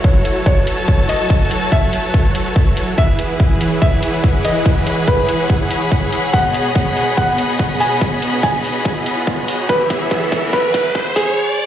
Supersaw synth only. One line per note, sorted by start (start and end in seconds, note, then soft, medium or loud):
0.00 2.94 F#3 medium
0.00 2.94 F#4 medium
0.00 2.94 A4 medium
0.00 2.94 C#5 medium
2.98 6.30 E3 medium
2.98 6.30 E4 medium
2.98 11.33 G#4 medium
2.98 6.30 B4 medium
6.33 9.66 B2 medium
6.33 11.33 B3 medium
6.33 9.66 D#5 medium
9.69 11.35 E3 medium
9.69 11.35 E5 medium